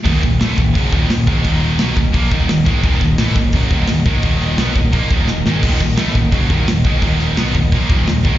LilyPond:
<<
  \new Staff \with { instrumentName = "String section" } { \time 4/4 \key ees \minor \tempo 4 = 172 <ges ees' bes' ees''>1~ | <ges ees' bes' ees''>1~ | <ges ees' bes' ees''>1~ | <ges ees' bes' ees''>1~ |
<ges ees' bes' ees''>1~ | <ges ees' bes' ees''>1 | }
  \new Staff \with { instrumentName = "Distorted electric guitar" } { \clef bass \time 4/4 \key ees \minor <ees, bes, ees>8 <ees, bes,>8 <a, fes a>8 <ees, bes,>8 <ges, des ges>8 <ees, bes, ees>8 <ees, bes,>8 <aes, ees aes>8 | <ees, bes, ees>4 <ces ges ces'>8 <ees, bes,>8 <bes, f bes>8 <ees, bes, ees>8 <ees, bes,>8 <aes, ees aes>8 | <ees, bes, ees>8 <ees, bes,>8 <a, fes a>8 <ees, bes,>8 <ges, des ges>8 <ees, bes, ees>8 <ees, bes,>8 <aes, ees aes>8 | <ees, bes, ees>4 <ces ges ces'>8 <ees, bes,>8 <bes, f bes>8 <ees, bes, ees>8 <ees, bes,>8 <aes, ees aes>8 |
<ees, bes, ees>8 <ees, bes,>8 <a, fes a>8 <ees, bes,>8 <ges, des ges>8 <ees, bes, ees>8 <ees, bes,>8 <aes, ees aes>8 | <ees, bes, ees>4 <ces ges ces'>8 <ees, bes,>8 <bes, f bes>8 <ees, bes, ees>8 <ees, bes,>8 <aes, ees aes>8 | }
  \new Staff \with { instrumentName = "Distorted electric guitar" } { \clef bass \time 4/4 \key ees \minor <ees, bes, ees>8 <ees, bes,>8 <a, fes a>8 <ees, bes,>8 <ges, des ges>8 <ees, bes, ees>8 <ees, bes,>8 <aes, ees aes>8 | <ees, bes, ees>4 <ces ges ces'>8 <ees, bes,>8 <bes, f bes>8 <ees, bes, ees>8 <ees, bes,>8 <aes, ees aes>8 | <ees, bes, ees>8 <ees, bes,>8 <a, fes a>8 <ees, bes,>8 <ges, des ges>8 <ees, bes, ees>8 <ees, bes,>8 <aes, ees aes>8 | <ees, bes, ees>4 <ces ges ces'>8 <ees, bes,>8 <bes, f bes>8 <ees, bes, ees>8 <ees, bes,>8 <aes, ees aes>8 |
<ees, bes, ees>8 <ees, bes,>8 <a, fes a>8 <ees, bes,>8 <ges, des ges>8 <ees, bes, ees>8 <ees, bes,>8 <aes, ees aes>8 | <ees, bes, ees>4 <ces ges ces'>8 <ees, bes,>8 <bes, f bes>8 <ees, bes, ees>8 <ees, bes,>8 <aes, ees aes>8 | }
  \new Staff \with { instrumentName = "Distorted electric guitar" } { \clef bass \time 4/4 \key ees \minor <ees, bes, ees>8 <ees, bes,>8 <a, fes a>8 <ees, bes,>8 <ges, des ges>8 <ees, bes, ees>8 <ees, bes,>8 <aes, ees aes>8 | <ees, bes, ees>4 <ces ges ces'>8 <ees, bes,>8 <bes, f bes>8 <ees, bes, ees>8 <ees, bes,>8 <aes, ees aes>8 | <ees, bes, ees>8 <ees, bes,>8 <a, fes a>8 <ees, bes,>8 <ges, des ges>8 <ees, bes, ees>8 <ees, bes,>8 <aes, ees aes>8 | <ees, bes, ees>4 <ces ges ces'>8 <ees, bes,>8 <bes, f bes>8 <ees, bes, ees>8 <ees, bes,>8 <aes, ees aes>8 |
<ees, bes, ees>8 <ees, bes,>8 <a, fes a>8 <ees, bes,>8 <ges, des ges>8 <ees, bes, ees>8 <ees, bes,>8 <aes, ees aes>8 | <ees, bes, ees>4 <ces ges ces'>8 <ees, bes,>8 <bes, f bes>8 <ees, bes, ees>8 <ees, bes,>8 <aes, ees aes>8 | }
  \new Staff \with { instrumentName = "Picked electric bass" } { \clef bass \time 4/4 \key ees \minor ees,,8 ees,,8 a,,8 ees,,8 ges,,8 ees,,8 ees,,8 aes,,8 | ees,,4 ces,8 ees,,8 bes,,8 ees,,8 ees,,8 aes,,8 | ees,,8 ees,,8 a,,8 ees,,8 ges,,8 ees,,8 ees,,8 aes,,8 | ees,,4 ces,8 ees,,8 bes,,8 ees,,8 ees,,8 aes,,8 |
ees,,8 ees,,8 a,,8 ees,,8 ges,,8 ees,,8 ees,,8 aes,,8 | ees,,4 ces,8 ees,,8 bes,,8 ees,,8 ees,,8 aes,,8 | }
  \new DrumStaff \with { instrumentName = "Drums" } \drummode { \time 4/4 <hho bd>8 bd8 <hho sn>16 sn16 bd8 <hho bd>8 bd8 <hho sn>8 bd8 | <hho bd>4 <hho sn>8 bd8 <hho bd>8 bd8 <hho sn>8 bd8 | <hho bd>8 <bd sn>8 <hho sn>16 sn16 bd8 <hho bd>8 bd8 <hho sn>8 bd8 | <hho bd>8 sn8 <hho sn>8 bd8 <hho bd>8 bd8 sn8 sn8 |
<cymc hho bd>8 bd8 <hho sn>8 bd8 <hho bd>8 bd8 <hho sn>8 bd8 | <hho bd>8 sn8 <hho sn>16 sn16 bd8 <hho bd>8 bd8 <hho sn>8 bd8 | }
>>